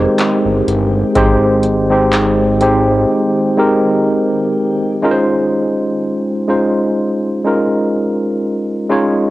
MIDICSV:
0, 0, Header, 1, 5, 480
1, 0, Start_track
1, 0, Tempo, 967742
1, 574, Time_signature, 4, 2, 24, 8
1, 4614, End_track
2, 0, Start_track
2, 0, Title_t, "Tine electric piano"
2, 0, Program_c, 0, 4
2, 0, Control_c, 0, 64, 127
2, 0, Note_on_c, 0, 56, 89
2, 0, Note_on_c, 0, 60, 77
2, 0, Note_on_c, 0, 63, 81
2, 0, Note_on_c, 0, 67, 82
2, 0, Note_on_c, 0, 68, 80
2, 0, Note_on_c, 0, 70, 107
2, 0, Note_on_c, 0, 72, 100
2, 435, Note_off_c, 0, 56, 0
2, 436, Note_off_c, 0, 60, 0
2, 438, Note_off_c, 0, 63, 0
2, 440, Note_off_c, 0, 67, 0
2, 441, Note_off_c, 0, 72, 0
2, 571, Note_on_c, 0, 56, 118
2, 574, Note_on_c, 0, 60, 107
2, 577, Note_on_c, 0, 63, 108
2, 580, Note_on_c, 0, 67, 111
2, 583, Note_on_c, 0, 72, 127
2, 864, Note_off_c, 0, 56, 0
2, 865, Note_off_c, 0, 60, 0
2, 867, Note_off_c, 0, 63, 0
2, 868, Note_off_c, 0, 67, 0
2, 870, Note_off_c, 0, 72, 0
2, 941, Note_on_c, 0, 56, 86
2, 944, Note_on_c, 0, 60, 77
2, 947, Note_on_c, 0, 63, 76
2, 950, Note_on_c, 0, 67, 76
2, 953, Note_on_c, 0, 72, 88
2, 1226, Note_off_c, 0, 56, 0
2, 1228, Note_off_c, 0, 60, 0
2, 1229, Note_off_c, 0, 63, 0
2, 1231, Note_off_c, 0, 67, 0
2, 1232, Note_off_c, 0, 72, 0
2, 1291, Note_on_c, 0, 56, 91
2, 1294, Note_on_c, 0, 60, 80
2, 1297, Note_on_c, 0, 63, 80
2, 1299, Note_on_c, 0, 67, 84
2, 1303, Note_on_c, 0, 72, 96
2, 1683, Note_off_c, 0, 56, 0
2, 1685, Note_off_c, 0, 60, 0
2, 1686, Note_off_c, 0, 63, 0
2, 1688, Note_off_c, 0, 67, 0
2, 1689, Note_off_c, 0, 72, 0
2, 1772, Note_on_c, 0, 56, 92
2, 1774, Note_on_c, 0, 60, 77
2, 1778, Note_on_c, 0, 63, 84
2, 1781, Note_on_c, 0, 67, 80
2, 1784, Note_off_c, 0, 70, 0
2, 1784, Note_on_c, 0, 70, 101
2, 2355, Note_off_c, 0, 56, 0
2, 2357, Note_off_c, 0, 60, 0
2, 2358, Note_off_c, 0, 63, 0
2, 2360, Note_off_c, 0, 67, 0
2, 2361, Note_off_c, 0, 70, 0
2, 2492, Note_on_c, 0, 56, 117
2, 2495, Note_on_c, 0, 61, 110
2, 2498, Note_on_c, 0, 63, 101
2, 2501, Control_c, 0, 64, 0
2, 2501, Note_on_c, 0, 65, 102
2, 2503, Note_off_c, 0, 68, 0
2, 2503, Note_on_c, 0, 70, 98
2, 2534, Note_off_c, 0, 70, 0
2, 2536, Note_on_c, 0, 72, 127
2, 2601, Control_c, 0, 64, 127
2, 3075, Note_off_c, 0, 56, 0
2, 3077, Note_off_c, 0, 61, 0
2, 3078, Note_off_c, 0, 63, 0
2, 3080, Note_off_c, 0, 65, 0
2, 3097, Note_off_c, 0, 72, 0
2, 3212, Note_on_c, 0, 56, 87
2, 3215, Note_on_c, 0, 61, 75
2, 3218, Note_on_c, 0, 63, 80
2, 3220, Note_on_c, 0, 65, 79
2, 3223, Note_on_c, 0, 72, 93
2, 3604, Note_off_c, 0, 56, 0
2, 3605, Note_off_c, 0, 61, 0
2, 3607, Note_off_c, 0, 63, 0
2, 3608, Note_off_c, 0, 65, 0
2, 3610, Note_off_c, 0, 72, 0
2, 3692, Note_on_c, 0, 56, 83
2, 3695, Note_on_c, 0, 61, 79
2, 3698, Note_on_c, 0, 63, 77
2, 3701, Note_on_c, 0, 65, 80
2, 3704, Note_on_c, 0, 70, 90
2, 4276, Note_off_c, 0, 56, 0
2, 4277, Note_off_c, 0, 61, 0
2, 4278, Note_off_c, 0, 63, 0
2, 4280, Note_off_c, 0, 65, 0
2, 4281, Note_off_c, 0, 70, 0
2, 4413, Note_on_c, 0, 56, 108
2, 4415, Note_on_c, 0, 61, 107
2, 4419, Note_on_c, 0, 63, 104
2, 4421, Note_on_c, 0, 65, 101
2, 4424, Note_on_c, 0, 73, 125
2, 4614, Note_off_c, 0, 56, 0
2, 4614, Note_off_c, 0, 61, 0
2, 4614, Note_off_c, 0, 63, 0
2, 4614, Note_off_c, 0, 65, 0
2, 4614, Note_off_c, 0, 73, 0
2, 4614, End_track
3, 0, Start_track
3, 0, Title_t, "Ambient pad"
3, 0, Program_c, 1, 92
3, 0, Note_on_c, 1, 51, 77
3, 0, Note_on_c, 1, 56, 72
3, 0, Note_on_c, 1, 67, 92
3, 2474, Note_off_c, 1, 51, 0
3, 2474, Note_off_c, 1, 56, 0
3, 2474, Note_off_c, 1, 67, 0
3, 4614, End_track
4, 0, Start_track
4, 0, Title_t, "Analog synth bass"
4, 0, Program_c, 2, 38
4, 224, Note_on_c, 2, 31, 89
4, 307, Note_off_c, 2, 31, 0
4, 334, Note_on_c, 2, 31, 93
4, 515, Note_off_c, 2, 31, 0
4, 574, Note_on_c, 2, 32, 98
4, 1514, Note_off_c, 2, 32, 0
4, 4614, End_track
5, 0, Start_track
5, 0, Title_t, "Drums"
5, 93, Note_on_c, 9, 42, 78
5, 96, Note_on_c, 9, 39, 107
5, 142, Note_off_c, 9, 42, 0
5, 146, Note_off_c, 9, 39, 0
5, 337, Note_on_c, 9, 42, 79
5, 387, Note_off_c, 9, 42, 0
5, 572, Note_on_c, 9, 42, 74
5, 574, Note_on_c, 9, 36, 110
5, 622, Note_off_c, 9, 42, 0
5, 623, Note_off_c, 9, 36, 0
5, 809, Note_on_c, 9, 42, 64
5, 859, Note_off_c, 9, 42, 0
5, 1055, Note_on_c, 9, 39, 116
5, 1056, Note_on_c, 9, 42, 72
5, 1104, Note_off_c, 9, 39, 0
5, 1106, Note_off_c, 9, 42, 0
5, 1292, Note_on_c, 9, 42, 65
5, 1342, Note_off_c, 9, 42, 0
5, 4614, End_track
0, 0, End_of_file